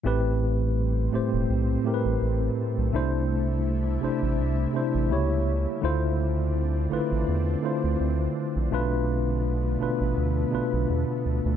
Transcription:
0.04 1.10 A1 loud
0.04 0.80 A2 loud
0.04 2.91 G3 medium
0.04 0.80 A3 loud
0.04 5.07 A3 medium
0.04 2.91 C4 medium
0.04 0.81 C4 medium
0.04 0.81 G4 medium
0.04 0.82 B4 loud
1.12 1.21 E1 soft
1.12 1.64 A2 medium
1.12 1.64 A3 medium
1.12 1.65 C4 medium
1.12 1.65 G4 medium
1.12 1.66 C5 medium
1.33 1.46 E1 medium
1.50 1.78 B1 loud
1.84 2.61 A2 medium
1.84 2.61 A3 medium
1.84 2.62 C4 medium
1.84 2.62 G4 medium
1.84 1.94 A#4 medium
1.94 2.66 B4 medium
2.05 2.18 A1 medium
2.22 2.50 A1 medium
2.78 2.91 B1 medium
2.93 3.99 C2 medium
2.93 3.69 C3 loud
2.93 5.09 C3 medium
2.93 3.70 A3 medium
2.93 5.09 D4 medium
2.93 3.70 D4 loud
2.93 5.80 E4 medium
2.93 3.70 E4 loud
2.93 3.71 C5 loud
4.01 4.11 A1 soft
4.01 4.53 C3 medium
4.01 4.54 A3 medium
4.01 4.54 D4 medium
4.01 4.55 E4 medium
4.01 4.55 C5 medium
4.22 4.41 A1 medium
4.39 4.67 C2 medium
4.73 5.10 C3 medium
4.73 5.10 A3 medium
4.73 5.11 D4 medium
4.73 5.10 E4 medium
4.73 5.12 C5 medium
4.95 5.13 A1 medium
5.09 5.67 C#2 loud
5.09 5.69 C#3 medium
5.09 5.70 A#3 medium
5.09 5.70 E4 medium
5.09 5.70 G4 medium
5.09 5.71 C#5 medium
5.81 6.88 D2 loud
5.81 6.58 D3 loud
5.81 11.57 D3 medium
5.81 6.59 A3 medium
5.81 8.69 C4 medium
5.81 8.69 D4 medium
5.81 6.59 E4 medium
5.81 6.59 F4 loud
5.81 6.60 C5 loud
6.90 7.00 A1 soft
6.90 7.42 D3 medium
6.90 7.43 A3 medium
6.90 7.43 E4 medium
6.90 7.44 F4 medium
6.90 7.44 B4 medium
7.12 7.24 A1 medium
7.28 7.56 E2 loud
7.62 8.39 D3 medium
7.62 8.39 A3 medium
7.62 8.40 E4 medium
7.62 8.40 F4 medium
7.62 8.41 C5 medium
7.84 7.97 D2 medium
8.01 8.28 D2 medium
8.56 8.69 A#1 medium
8.71 9.77 B1 loud
8.71 9.47 B2 loud
8.71 9.48 A3 medium
8.71 11.57 A3 medium
8.71 11.57 B3 medium
8.71 9.48 D4 loud
8.71 9.49 F4 medium
8.71 9.49 B4 loud
9.79 9.89 A1 soft
9.79 10.31 B2 medium
9.79 10.32 A3 medium
9.79 10.32 D4 medium
9.79 10.33 F4 medium
9.79 10.33 B4 medium
10.01 10.13 A1 medium
10.17 10.45 D2 medium
10.51 10.61 B1 soft
10.51 11.28 B2 medium
10.51 11.28 A3 medium
10.51 11.29 D4 medium
10.51 11.29 F4 medium
10.51 11.30 B4 medium
10.73 10.86 B1 medium
10.90 11.05 E2 medium
11.26 11.41 D2 medium
11.46 11.57 D2 medium

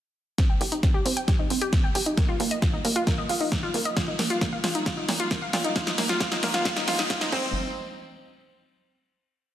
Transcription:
0.38 0.46 C4 medium
0.38 kick loud
0.38 snare soft
0.38 closed hi-hat medium
0.50 0.54 G5 medium
0.61 0.76 C2 loud
0.61 0.71 G4 medium
0.61 open hi-hat loud
0.72 0.76 D#4 medium
0.72 closed hi-hat medium
0.83 0.90 C4 medium
0.83 kick loud
0.83 snare soft
0.83 closed hi-hat medium
0.94 1.02 G4 loud
1.05 1.20 C2 medium
1.05 1.13 C4 medium
1.05 open hi-hat loud
1.17 1.21 G5 medium
1.17 closed hi-hat medium
1.28 1.39 G4 medium
1.28 kick loud
1.28 snare medium
1.28 closed hi-hat medium
1.39 1.43 D#4 medium
1.50 1.65 G1 medium
1.50 1.58 C4 medium
1.50 open hi-hat loud
1.61 1.69 G4 loud
1.61 closed hi-hat medium
1.73 1.80 C4 medium
1.73 kick loud
1.73 snare medium
1.73 closed hi-hat medium
1.84 1.88 G5 medium
1.95 2.10 G1 loud
1.95 2.06 G4 medium
1.95 open hi-hat loud
2.06 2.11 D#4 medium
2.06 closed hi-hat medium
2.17 2.25 A#3 medium
2.17 kick loud
2.17 snare medium
2.17 closed hi-hat medium
2.29 2.36 F4 loud
2.40 2.55 D#2 loud
2.40 2.47 A#3 medium
2.40 open hi-hat loud
2.51 2.55 D#5 medium
2.51 closed hi-hat medium
2.62 2.73 F4 medium
2.62 kick loud
2.62 snare medium
2.62 closed hi-hat medium
2.73 2.78 D#4 medium
2.85 3.00 D#2 medium
2.85 2.92 A#3 medium
2.85 open hi-hat loud
2.96 3.03 F4 loud
2.96 closed hi-hat medium
3.07 3.14 A#3 medium
3.07 kick loud
3.07 snare medium
3.07 closed hi-hat medium
3.18 3.23 D#5 medium
3.29 3.44 D#1 medium
3.29 3.40 F4 medium
3.29 open hi-hat loud
3.41 3.45 D#4 medium
3.41 open hi-hat medium
3.52 3.59 A#3 medium
3.52 kick loud
3.52 snare medium
3.52 closed hi-hat medium
3.63 3.70 F4 loud
3.74 3.89 D#1 loud
3.74 3.81 A#3 medium
3.74 open hi-hat loud
3.85 3.90 D#5 medium
3.85 closed hi-hat medium
3.97 4.07 F4 medium
3.97 kick loud
3.97 snare medium
3.97 closed hi-hat medium
4.08 4.12 D#4 medium
4.19 4.34 A#1 medium
4.19 4.26 A#3 medium
4.19 snare medium
4.19 open hi-hat loud
4.30 4.37 F4 loud
4.30 closed hi-hat medium
4.41 4.49 A#3 medium
4.41 kick loud
4.41 snare medium
4.41 closed hi-hat medium
4.53 4.57 F5 medium
4.64 4.79 A#1 medium
4.64 4.74 F4 medium
4.64 snare medium
4.64 open hi-hat loud
4.75 4.79 D#4 medium
4.75 closed hi-hat medium
4.86 4.97 F4 medium
4.86 kick loud
4.86 snare medium
4.86 closed hi-hat medium
4.97 5.02 D#4 medium
5.09 5.23 A#2 medium
5.09 5.16 A#3 medium
5.09 snare medium
5.09 open hi-hat loud
5.20 5.27 F4 loud
5.20 closed hi-hat medium
5.31 5.38 A#3 medium
5.31 kick loud
5.31 snare medium
5.31 closed hi-hat medium
5.42 5.46 F5 medium
5.53 5.68 A#2 loud
5.53 5.64 F4 medium
5.53 snare medium
5.53 open hi-hat loud
5.64 5.69 D#4 medium
5.64 closed hi-hat medium
5.76 5.86 F4 medium
5.76 kick loud
5.76 snare medium
5.76 closed hi-hat medium
5.87 5.91 D#4 medium
5.87 snare medium
5.98 6.13 F1 loud
5.98 6.05 A#3 medium
5.98 snare medium
5.98 open hi-hat loud
6.09 6.16 F4 loud
6.09 snare medium
6.09 closed hi-hat medium
6.20 6.31 F4 medium
6.20 kick loud
6.20 snare medium
6.20 closed hi-hat medium
6.32 6.36 D#4 medium
6.32 snare medium
6.43 6.58 F1 medium
6.43 6.50 A#3 medium
6.43 snare loud
6.43 open hi-hat loud
6.54 6.61 F4 loud
6.54 snare medium
6.54 closed hi-hat medium
6.65 6.76 F4 medium
6.65 kick loud
6.65 snare loud
6.65 closed hi-hat medium
6.76 6.81 D#4 medium
6.76 snare medium
6.88 7.02 F1 medium
6.88 6.98 F4 medium
6.88 snare loud
6.88 open hi-hat loud
6.99 7.03 D#4 medium
6.99 snare loud
6.99 open hi-hat medium
7.10 7.21 F4 medium
7.10 kick loud
7.10 snare loud
7.10 closed hi-hat medium
7.21 7.26 D#4 medium
7.21 snare medium
7.32 7.53 C2 medium
7.32 7.53 C4 medium
7.32 kick loud
7.32 crash medium

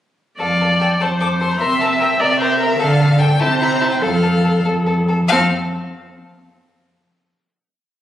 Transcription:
0.39 0.94 F2 soft
0.39 0.47 A4 soft
0.39 1.03 D5 soft
0.39 0.78 F5 soft
0.61 0.69 A4 soft
0.81 0.89 A4 soft
0.81 0.89 G5 soft
1.00 1.53 F2 soft
1.00 1.08 A4 soft
1.00 1.60 C5 soft
1.00 1.09 A5 soft
1.20 1.28 A4 soft
1.20 1.28 D6 medium
1.40 1.48 A4 soft
1.40 1.53 C6 soft
1.51 1.61 A#5 soft
1.60 2.13 C3 soft
1.60 1.68 A#4 soft
1.60 2.22 E5 soft
1.60 1.82 C6 medium
1.80 1.88 A#4 soft
1.80 2.02 A5 medium
2.00 2.08 A#4 soft
2.00 2.19 G5 soft
2.19 2.72 C3 soft
2.19 2.28 A#4 soft
2.19 2.39 D5 medium
2.19 2.81 E5 medium
2.40 2.48 A#4 soft
2.40 2.59 C5 medium
2.60 2.79 A#4 medium
2.60 2.68 A#4 soft
2.79 3.33 D3 medium
2.79 2.87 A4 medium
2.79 3.39 A4 medium
2.79 3.20 F5 medium
2.99 3.07 A4 soft
3.19 3.27 A4 medium
3.19 3.41 G5 medium
3.40 3.94 C3 medium
3.40 3.48 E4 medium
3.40 4.03 C5 medium
3.40 3.59 A5 medium
3.59 3.69 E4 soft
3.59 3.82 A#5 medium
3.80 3.89 E4 soft
3.80 3.91 A5 medium
3.91 3.95 G5 medium
4.01 4.58 F2 medium
4.01 4.10 A4 soft
4.01 4.98 A4 medium
4.01 4.64 F5 medium
4.23 4.31 A4 soft
4.44 4.52 A4 soft
4.65 5.22 F2 soft
4.65 4.73 A4 soft
4.86 4.94 A4 soft
5.08 5.16 A4 soft
5.29 5.53 F2 medium
5.29 5.53 C4 medium
5.29 5.53 A4 medium
5.29 5.52 F5 medium

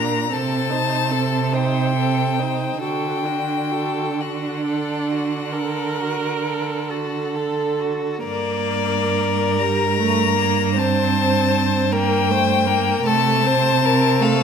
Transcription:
0.00 0.34 A#2 medium
0.00 0.30 D4 soft
0.00 0.30 A#4 soft
0.00 0.34 A#5 medium
0.30 2.83 C3 soft
0.30 0.72 C4 soft
0.30 0.73 A4 soft
0.30 1.56 A5 medium
0.70 1.12 D#4 soft
0.70 1.13 C5 soft
1.10 1.54 C4 soft
1.10 1.55 A4 soft
1.53 1.94 D#4 soft
1.53 1.97 C5 soft
1.53 2.83 G5 medium
1.95 2.40 C4 soft
1.95 2.41 A4 soft
2.39 2.82 D#4 soft
2.39 2.80 C5 soft
2.81 7.99 D3 soft
2.81 3.26 F#4 soft
2.81 3.28 A4 soft
2.81 4.22 G5 soft
3.25 3.72 D4 soft
3.25 3.74 F#4 soft
3.71 4.17 F#4 soft
3.71 4.23 A4 soft
4.17 5.54 D4 soft
4.17 4.65 F#4 soft
4.17 7.81 F#5 soft
4.65 5.13 A4 soft
5.11 5.55 F#4 soft
5.53 6.02 A4 soft
5.53 6.91 A#4 soft
6.01 6.45 F#4 soft
6.46 6.92 A4 soft
6.90 7.37 F#4 soft
6.90 8.24 A4 soft
7.35 7.81 A4 soft
7.80 8.23 F#4 soft
8.23 13.02 G2 medium
8.23 9.56 A#3 soft
8.23 10.74 A#4 medium
8.23 9.61 D5 medium
9.59 9.99 G3 medium
9.59 10.80 A#5 medium
10.00 10.37 A3 medium
10.38 10.78 A#3 soft
10.76 11.94 C4 soft
10.76 11.94 C5 medium
10.76 11.94 A5 medium
11.92 12.32 A#3 medium
11.92 12.33 A#4 medium
11.92 13.05 G5 medium
12.30 12.68 A3 medium
12.30 12.69 C5 medium
12.67 13.04 A#3 medium
12.67 13.08 A#4 medium
13.05 14.43 C3 medium
13.05 13.45 A3 medium
13.05 13.48 A4 medium
13.05 14.23 A5 medium
13.44 13.83 C4 medium
13.44 13.87 C5 medium
13.84 14.23 C4 medium
13.84 14.24 A#4 medium
14.21 14.43 A3 medium
14.21 14.43 A4 medium
14.21 14.43 F5 medium

